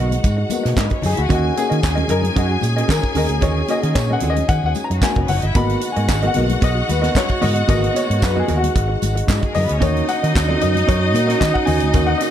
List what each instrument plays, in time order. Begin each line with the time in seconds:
Already playing: french horn section G#3 D#4 F#4 G#4 D#5, grand piano A#3 B3 F#4, clean electric guitar B3 F#4, string section F#4 F#5
0.00 fingered electric bass B1
0.10 muted clean electric guitar stroke, closed hi-hat, high conga
0.23 fingered electric bass G#2, muted clean electric guitar stroke, kick, closed hi-hat, tambourine, muted conga
0.37 muted clean electric guitar stroke
0.50 grand piano A#3 B3 F#4, closed hi-hat, tambourine, muted conga, high conga
0.63 fingered electric bass B2, muted clean electric guitar stroke, snare, closed hi-hat
0.76 fingered electric bass G#2, string section A#3 A#4, muted clean electric guitar stroke, kick, snare, clap, tambourine, muted conga, high conga
0.86 string section B3 B4, closed hi-hat
0.91 string section C#4 C#5, muted clean electric guitar stroke, kick
1.02 fingered electric bass F#2, string section D#4 D#5, grand piano G#4, open hi-hat, tambourine, low conga
1.13 string section E4 E5
1.17 fingered electric bass D2, grand piano F#4, muted clean electric guitar stroke, closed hi-hat
1.23 string section F#4 F#5
1.29 fingered electric bass D#2, clean electric guitar C#4 F#4 A#4 D#5, french horn section C#4, grand piano F#4, string section G#4 G#5, kick, closed hi-hat, tambourine, low conga
1.56 grand piano A#3 C#4 F#4 G#4, closed hi-hat, tambourine, muted conga
1.70 fingered electric bass D#3, clean electric guitar C#4 F#4 A#4 D#5, closed hi-hat
1.81 fingered electric bass D#2, muted clean electric guitar stroke, kick, snare, clap, tambourine
1.95 clean electric guitar C#4 F#4 A#4 D#5, closed hi-hat, high conga
2.08 fingered electric bass F#2, clean electric guitar C#4 F#4 A#4 D#5, grand piano A#4, closed hi-hat, tambourine, low conga
2.23 closed hi-hat, high conga
2.36 fingered electric bass F#2, clean electric guitar C#4 F#4 A#4 D#5, grand piano F#4, kick, closed hi-hat, tambourine
2.50 muted clean electric guitar stroke
2.61 fingered electric bass A#2, muted clean electric guitar stroke, closed hi-hat, tambourine, muted conga, high conga
2.76 clean electric guitar C#4 F#4 A#4 D#5, closed hi-hat
2.88 fingered electric bass D#3, grand piano A#4, kick, snare, clap, tambourine, high conga
3.03 muted clean electric guitar stroke, kick
3.15 fingered electric bass D#2, clean electric guitar C#4 F#4 A#4 D#5, grand piano A#4, open hi-hat, tambourine, muted conga, low conga
3.29 fingered electric bass D2, muted clean electric guitar stroke, closed hi-hat
3.41 fingered electric bass D#2, clean electric guitar C#4 F#4 A#4 D#5, grand piano C#5, kick, closed hi-hat, tambourine, low conga
3.68 grand piano A#3 C#4 F#4 D#5, clean electric guitar C#4 F#4 A#4 D#5, closed hi-hat, tambourine, muted conga
3.83 fingered electric bass D#3, clean electric guitar C#4 F#4 A#4 D#5, closed hi-hat
3.95 fingered electric bass A#2, grand piano C#5, kick, snare, clap, tambourine
4.10 clean electric guitar C#4 F#4 A#4 D#5, grand piano F#5, high conga
4.20 fingered electric bass D#2, clean electric guitar C#4 F#4 A#4 D#5, closed hi-hat, tambourine, muted conga, low conga
4.30 grand piano D#5
4.36 muted clean electric guitar stroke, closed hi-hat, high conga
4.48 fingered electric bass D#3, grand piano F#5, muted clean electric guitar stroke, kick, closed hi-hat, tambourine
4.63 fingered electric bass D#2, grand piano F#5, muted clean electric guitar stroke
4.75 closed hi-hat, tambourine, high conga
4.84 grand piano A#5
4.90 fingered electric bass F#2, string section F#3 F#4, muted clean electric guitar stroke, closed hi-hat
5.01 string section G#3 G#4, grand piano A#3 C#4 F#4 G#5, muted clean electric guitar stroke, kick, snare, clap, tambourine, high conga
5.10 string section A#3 A#4
5.15 fingered electric bass F1, muted clean electric guitar stroke, kick, closed hi-hat
5.20 string section B3 B4
5.28 fingered electric bass F#1, string section C#4 C#5, grand piano F#5, open hi-hat, tambourine, low conga
5.38 string section D#4 D#5
5.42 fingered electric bass G1, string section E5, muted clean electric guitar stroke, closed hi-hat
5.46 string section E4
5.53 fingered electric bass G#1, french horn section G#3 G#4 D#5, grand piano A#3 B3 F#4 B5, clean electric guitar B3 F#4 A#4, string section F#4 F#5, kick, closed hi-hat, tambourine, muted conga, low conga
5.58 clean electric guitar D#5
5.69 closed hi-hat
5.81 muted clean electric guitar stroke, closed hi-hat, tambourine
5.92 grand piano G#5
5.96 fingered electric bass G#2, clean electric guitar B3 F#4 A#4 D#5, closed hi-hat
6.08 fingered electric bass G#1, kick, snare, clap, tambourine, muted conga
6.22 clean electric guitar B3 F#4 A#4 D#5, closed hi-hat, high conga
6.27 grand piano F#5
6.34 fingered electric bass B1, grand piano A#3 B3 F#4, clean electric guitar B3 F#4 A#4 D#5, closed hi-hat, muted conga, low conga
6.48 muted clean electric guitar stroke, closed hi-hat, high conga
6.62 fingered electric bass B1, clean electric guitar B3 F#4 A#4 D#5, grand piano D#5, kick, closed hi-hat, tambourine, muted conga
6.76 muted clean electric guitar stroke
6.88 fingered electric bass D#2, grand piano B4, muted clean electric guitar stroke, closed hi-hat, tambourine, muted conga, high conga
7.02 clean electric guitar B3 F#4 A#4 D#5, snare, closed hi-hat
7.15 grand piano C#5, kick, snare, clap, tambourine, muted conga, high conga
7.29 muted clean electric guitar stroke, kick, closed hi-hat
7.41 fingered electric bass G#2, clean electric guitar B3 F#4 A#4 D#5, grand piano D#5, open hi-hat, tambourine, muted conga, low conga
7.56 muted clean electric guitar stroke, closed hi-hat
7.67 fingered electric bass G#1, grand piano A#3 B3 F#4 D#5, clean electric guitar B3 F#4 A#4 D#5, french horn section G#4, kick, closed hi-hat, tambourine, muted conga, low conga
7.84 closed hi-hat
7.94 clean electric guitar B3 F#4 A#4 D#5, grand piano C#5, closed hi-hat, tambourine
8.09 fingered electric bass G#2, clean electric guitar B3 F#4 A#4 D#5, closed hi-hat
8.22 fingered electric bass F#2, grand piano B4, muted clean electric guitar stroke, kick, snare, clap, tambourine, muted conga
8.36 clean electric guitar B3 F#4 A#4 D#5, grand piano G#4, high conga
8.48 fingered electric bass D#2, clean electric guitar B3 F#4 A#4 D#5, closed hi-hat, tambourine, muted conga, low conga
8.57 grand piano F#4
8.63 muted clean electric guitar stroke, closed hi-hat, high conga
8.76 fingered electric bass G#1, muted clean electric guitar stroke, kick, closed hi-hat
8.88 muted clean electric guitar stroke
9.02 fingered electric bass G#1, closed hi-hat, tambourine, high conga
9.15 muted clean electric guitar stroke, closed hi-hat
9.27 fingered electric bass G#2, string section E3 E4, muted clean electric guitar stroke, kick, snare, clap, tambourine, muted conga, high conga
9.37 string section F#3 F#4
9.41 string section G#3, muted clean electric guitar stroke, kick, closed hi-hat
9.46 string section G#4
9.54 fingered electric bass F#2, string section A#3 A#4, grand piano D#5, open hi-hat, tambourine, low conga
9.63 string section B3 B4
9.68 fingered electric bass D2, muted clean electric guitar stroke, closed hi-hat
9.73 string section C#4 C#5
9.80 fingered electric bass D#2, grand piano A#3 C#4 F#4 C#5, clean electric guitar C#4 F#4 A#4 D#5, french horn section C#4 D#4 F#4, string section D#4 D#5, kick, closed hi-hat, tambourine, muted conga, low conga
9.97 closed hi-hat
10.08 grand piano F#5, muted clean electric guitar stroke, closed hi-hat, tambourine, muted conga
10.23 fingered electric bass D#3, clean electric guitar C#4 F#4 A#4 D#5, closed hi-hat
10.35 fingered electric bass D#2, muted clean electric guitar stroke, kick, snare, clap, tambourine, muted conga
10.48 clean electric guitar C#4 F#4 A#4 D#5, high conga
10.61 fingered electric bass F#2, clean electric guitar C#4 F#4 A#4 D#5, grand piano D#5, closed hi-hat, tambourine, low conga
10.75 closed hi-hat, high conga
10.87 fingered electric bass F#2, clean electric guitar C#4 F#4 A#4 D#5, grand piano C#5, kick, closed hi-hat, tambourine
11.02 muted clean electric guitar stroke
11.14 fingered electric bass A#2, grand piano A#3 C#4 F#4, muted clean electric guitar stroke, closed hi-hat, tambourine, muted conga, high conga
11.27 clean electric guitar C#4 F#4 A#4 D#5, snare, closed hi-hat
11.40 fingered electric bass D#3, grand piano D#5, kick, snare, clap, tambourine, muted conga, high conga
11.54 grand piano F#5, muted clean electric guitar stroke, kick
11.65 fingered electric bass D#2, clean electric guitar C#4 F#4 A#4 D#5, grand piano G#5, open hi-hat, tambourine, low conga
11.80 fingered electric bass D2, muted clean electric guitar stroke, closed hi-hat
11.93 fingered electric bass D#2, grand piano A#3 C#4 F#4, clean electric guitar C#4 F#4 A#4 D#5, kick, closed hi-hat, tambourine, low conga
12.07 grand piano F#5
12.18 clean electric guitar C#4, grand piano D#5, closed hi-hat, tambourine
12.22 clean electric guitar F#4 A#4 D#5